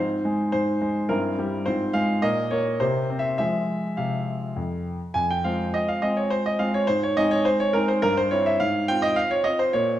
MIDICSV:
0, 0, Header, 1, 2, 480
1, 0, Start_track
1, 0, Key_signature, -4, "minor"
1, 0, Tempo, 568182
1, 1406, Time_signature, 3, 2, 24, 8
1, 1887, Tempo, 584226
1, 4767, Tempo, 571429
1, 8342, End_track
2, 0, Start_track
2, 0, Title_t, "Grand piano"
2, 0, Program_c, 0, 0
2, 0, Note_on_c, 0, 44, 54
2, 0, Note_on_c, 0, 60, 38
2, 0, Note_on_c, 0, 63, 36
2, 0, Note_on_c, 0, 72, 70
2, 126, Control_c, 0, 64, 127
2, 210, Note_on_c, 0, 56, 52
2, 429, Note_off_c, 0, 72, 0
2, 434, Note_off_c, 0, 44, 0
2, 441, Note_on_c, 0, 72, 80
2, 447, Note_on_c, 0, 44, 52
2, 673, Note_off_c, 0, 56, 0
2, 686, Note_on_c, 0, 56, 46
2, 895, Note_off_c, 0, 63, 0
2, 896, Note_off_c, 0, 60, 0
2, 912, Note_off_c, 0, 44, 0
2, 919, Note_off_c, 0, 56, 0
2, 919, Note_on_c, 0, 70, 74
2, 923, Note_on_c, 0, 43, 58
2, 923, Note_on_c, 0, 64, 44
2, 924, Note_off_c, 0, 72, 0
2, 924, Note_on_c, 0, 60, 42
2, 936, Control_c, 0, 64, 0
2, 1102, Control_c, 0, 64, 127
2, 1171, Note_on_c, 0, 55, 54
2, 1370, Note_off_c, 0, 64, 0
2, 1371, Note_off_c, 0, 60, 0
2, 1389, Note_off_c, 0, 43, 0
2, 1399, Note_on_c, 0, 72, 78
2, 1401, Note_off_c, 0, 55, 0
2, 1402, Note_off_c, 0, 70, 0
2, 1404, Note_on_c, 0, 65, 41
2, 1406, Note_on_c, 0, 44, 55
2, 1406, Note_on_c, 0, 60, 43
2, 1417, Control_c, 0, 64, 0
2, 1583, Control_c, 0, 64, 127
2, 1634, Note_on_c, 0, 77, 88
2, 1639, Note_on_c, 0, 56, 56
2, 1643, Note_off_c, 0, 72, 0
2, 1853, Note_off_c, 0, 65, 0
2, 1854, Note_off_c, 0, 60, 0
2, 1873, Note_off_c, 0, 44, 0
2, 1876, Note_off_c, 0, 56, 0
2, 1877, Note_on_c, 0, 75, 86
2, 1879, Note_on_c, 0, 58, 45
2, 1880, Note_on_c, 0, 70, 42
2, 1881, Note_off_c, 0, 77, 0
2, 1882, Note_on_c, 0, 46, 63
2, 1894, Control_c, 0, 64, 0
2, 2044, Control_c, 0, 64, 127
2, 2107, Note_off_c, 0, 58, 0
2, 2112, Note_on_c, 0, 73, 77
2, 2119, Note_off_c, 0, 75, 0
2, 2119, Note_on_c, 0, 58, 56
2, 2325, Note_off_c, 0, 70, 0
2, 2341, Note_off_c, 0, 58, 0
2, 2345, Note_off_c, 0, 46, 0
2, 2352, Note_on_c, 0, 72, 84
2, 2354, Note_on_c, 0, 58, 43
2, 2356, Note_off_c, 0, 73, 0
2, 2356, Note_on_c, 0, 48, 58
2, 2356, Note_on_c, 0, 67, 41
2, 2369, Control_c, 0, 64, 0
2, 2512, Control_c, 0, 64, 127
2, 2599, Note_on_c, 0, 60, 53
2, 2673, Note_on_c, 0, 76, 76
2, 2675, Note_off_c, 0, 72, 0
2, 2804, Note_off_c, 0, 58, 0
2, 2805, Note_off_c, 0, 67, 0
2, 2817, Note_off_c, 0, 76, 0
2, 2823, Note_off_c, 0, 48, 0
2, 2829, Note_on_c, 0, 76, 83
2, 2833, Note_off_c, 0, 60, 0
2, 2836, Note_on_c, 0, 68, 36
2, 2837, Note_on_c, 0, 53, 45
2, 2837, Note_on_c, 0, 56, 40
2, 2852, Control_c, 0, 64, 0
2, 2998, Control_c, 0, 64, 127
2, 3177, Note_off_c, 0, 53, 0
2, 3225, Note_off_c, 0, 56, 0
2, 3225, Note_off_c, 0, 68, 0
2, 3314, Note_on_c, 0, 77, 61
2, 3318, Note_off_c, 0, 76, 0
2, 3319, Note_on_c, 0, 48, 48
2, 3660, Note_off_c, 0, 48, 0
2, 3800, Note_on_c, 0, 41, 43
2, 3816, Control_c, 0, 64, 0
2, 4046, Note_off_c, 0, 77, 0
2, 4141, Note_off_c, 0, 41, 0
2, 4276, Note_on_c, 0, 80, 84
2, 4283, Note_on_c, 0, 41, 46
2, 4403, Note_off_c, 0, 80, 0
2, 4410, Note_on_c, 0, 79, 76
2, 4442, Control_c, 0, 64, 127
2, 4519, Note_off_c, 0, 41, 0
2, 4524, Note_on_c, 0, 77, 68
2, 4528, Note_on_c, 0, 56, 38
2, 4530, Note_off_c, 0, 79, 0
2, 4532, Note_on_c, 0, 60, 40
2, 4535, Note_on_c, 0, 65, 39
2, 4765, Note_off_c, 0, 77, 0
2, 4766, Note_on_c, 0, 75, 81
2, 4776, Control_c, 0, 64, 0
2, 4888, Note_off_c, 0, 75, 0
2, 4888, Note_on_c, 0, 77, 72
2, 4975, Note_off_c, 0, 56, 0
2, 4977, Note_off_c, 0, 60, 0
2, 4978, Note_off_c, 0, 65, 0
2, 5003, Note_on_c, 0, 75, 73
2, 5009, Note_off_c, 0, 77, 0
2, 5009, Note_on_c, 0, 56, 41
2, 5013, Note_on_c, 0, 60, 41
2, 5016, Note_on_c, 0, 65, 38
2, 5126, Note_off_c, 0, 75, 0
2, 5127, Note_on_c, 0, 73, 67
2, 5242, Note_on_c, 0, 72, 82
2, 5248, Note_off_c, 0, 73, 0
2, 5365, Note_off_c, 0, 72, 0
2, 5371, Note_on_c, 0, 75, 75
2, 5454, Note_off_c, 0, 56, 0
2, 5456, Note_off_c, 0, 60, 0
2, 5457, Note_off_c, 0, 65, 0
2, 5482, Note_on_c, 0, 77, 82
2, 5487, Note_on_c, 0, 56, 42
2, 5489, Note_off_c, 0, 75, 0
2, 5491, Note_on_c, 0, 60, 44
2, 5493, Note_on_c, 0, 65, 44
2, 5604, Note_off_c, 0, 77, 0
2, 5609, Note_on_c, 0, 73, 74
2, 5702, Note_off_c, 0, 56, 0
2, 5704, Note_off_c, 0, 60, 0
2, 5705, Note_off_c, 0, 65, 0
2, 5719, Note_on_c, 0, 72, 90
2, 5724, Note_on_c, 0, 44, 53
2, 5727, Note_off_c, 0, 73, 0
2, 5841, Note_off_c, 0, 72, 0
2, 5853, Note_on_c, 0, 73, 79
2, 5899, Control_c, 0, 64, 127
2, 5956, Note_off_c, 0, 44, 0
2, 5967, Note_on_c, 0, 75, 91
2, 5968, Note_off_c, 0, 73, 0
2, 5971, Note_on_c, 0, 56, 47
2, 5975, Note_on_c, 0, 60, 42
2, 5979, Note_on_c, 0, 63, 51
2, 6085, Note_off_c, 0, 75, 0
2, 6087, Note_on_c, 0, 73, 86
2, 6204, Note_off_c, 0, 73, 0
2, 6204, Note_on_c, 0, 72, 88
2, 6213, Control_c, 0, 64, 0
2, 6323, Note_off_c, 0, 72, 0
2, 6329, Note_on_c, 0, 73, 86
2, 6411, Note_off_c, 0, 56, 0
2, 6413, Note_off_c, 0, 60, 0
2, 6415, Note_off_c, 0, 63, 0
2, 6441, Note_on_c, 0, 70, 88
2, 6445, Note_off_c, 0, 73, 0
2, 6449, Note_on_c, 0, 56, 45
2, 6455, Note_on_c, 0, 60, 47
2, 6456, Note_on_c, 0, 63, 51
2, 6561, Note_off_c, 0, 70, 0
2, 6567, Note_on_c, 0, 72, 78
2, 6661, Note_off_c, 0, 56, 0
2, 6665, Note_off_c, 0, 60, 0
2, 6665, Note_off_c, 0, 63, 0
2, 6684, Note_off_c, 0, 72, 0
2, 6685, Note_on_c, 0, 70, 99
2, 6689, Note_on_c, 0, 43, 67
2, 6803, Note_off_c, 0, 70, 0
2, 6812, Note_on_c, 0, 72, 91
2, 6874, Control_c, 0, 64, 127
2, 6918, Note_off_c, 0, 43, 0
2, 6926, Note_off_c, 0, 72, 0
2, 6926, Note_on_c, 0, 73, 83
2, 6930, Note_on_c, 0, 60, 45
2, 6934, Note_on_c, 0, 64, 57
2, 7043, Note_off_c, 0, 73, 0
2, 7054, Note_on_c, 0, 76, 83
2, 7142, Note_off_c, 0, 60, 0
2, 7144, Note_off_c, 0, 64, 0
2, 7166, Control_c, 0, 64, 0
2, 7167, Note_off_c, 0, 76, 0
2, 7168, Note_on_c, 0, 77, 93
2, 7175, Note_on_c, 0, 44, 64
2, 7317, Control_c, 0, 64, 127
2, 7401, Note_off_c, 0, 44, 0
2, 7405, Note_off_c, 0, 77, 0
2, 7408, Note_on_c, 0, 79, 96
2, 7412, Note_on_c, 0, 60, 47
2, 7415, Note_on_c, 0, 65, 54
2, 7524, Note_on_c, 0, 75, 89
2, 7525, Note_off_c, 0, 79, 0
2, 7641, Note_on_c, 0, 77, 95
2, 7643, Note_off_c, 0, 75, 0
2, 7654, Control_c, 0, 64, 0
2, 7761, Note_off_c, 0, 77, 0
2, 7765, Note_on_c, 0, 73, 82
2, 7855, Note_off_c, 0, 60, 0
2, 7856, Note_off_c, 0, 65, 0
2, 7875, Note_on_c, 0, 75, 84
2, 7883, Note_on_c, 0, 60, 44
2, 7884, Note_off_c, 0, 73, 0
2, 7886, Note_on_c, 0, 65, 45
2, 8000, Note_off_c, 0, 75, 0
2, 8003, Note_on_c, 0, 72, 82
2, 8101, Note_off_c, 0, 60, 0
2, 8102, Note_off_c, 0, 65, 0
2, 8121, Note_on_c, 0, 73, 82
2, 8125, Note_off_c, 0, 72, 0
2, 8126, Note_on_c, 0, 46, 61
2, 8304, Control_c, 0, 64, 127
2, 8342, Note_off_c, 0, 46, 0
2, 8342, Note_off_c, 0, 73, 0
2, 8342, End_track
0, 0, End_of_file